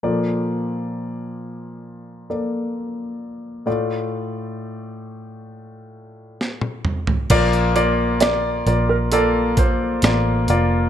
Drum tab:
CC |----------------|----------------|x---------------|
HH |----------------|----------------|xxx-x-x-x-x-x-x-|
SD |----------------|------------o---|----o-------o---|
T1 |----------------|-------------o--|----------------|
T2 |----------------|--------------o-|----------------|
FT |----------------|---------------o|----------------|
BD |----------------|----------------|o---------o-----|